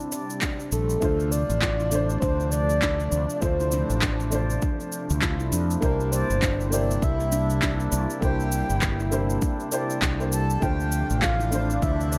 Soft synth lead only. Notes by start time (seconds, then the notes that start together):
Already playing: E4
0.72 A4
1.02 A4
1.31 D5
2.20 C5
2.51 D5
3.36 D5
3.41 C5
5.82 A#4
6.12 C5
6.72 D5
7.03 E5
8.22 G5
10.32 A5
10.62 G5
11.22 F5
11.82 E5